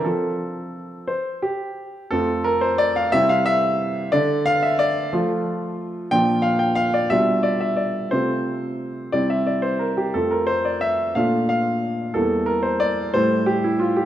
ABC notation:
X:1
M:6/8
L:1/16
Q:3/8=60
K:F
V:1 name="Grand piano"
A6 c2 G4 | A2 B c d f e f e4 | d2 f e d2 z6 | g2 f g f d e2 d e d2 |
c6 d e d c B G | A B c d e2 f2 f4 | A2 B c d2 c2 G E F G |]
V:2 name="Grand piano"
[F,CF]6 z6 | [F,,A,CF]6 [C,G,CE]6 | D,6 [F,A,F]6 | [B,,F,DF]6 [=B,,G,DF]6 |
[C,A,CF]6 [C,G,CE]6 | [F,,A,CF]6 [B,,A,DF]6 | [E,,G,B,E]6 [A,,G,A,E]6 |]